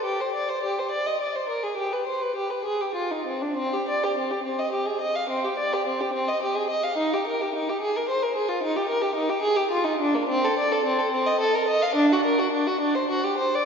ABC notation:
X:1
M:12/8
L:1/16
Q:3/8=70
K:Cm
V:1 name="Violin"
G c d c G c d e d c B A G =B c B G B A G F E C D | C G d G C G C e G A e f C G d G C G C e G A e f | E G B G E G A B c B A F E G B G E G A G F E D B, | [K:Dphr] C A d A C A C e A B e f D ^F B F D F D c F G c d |]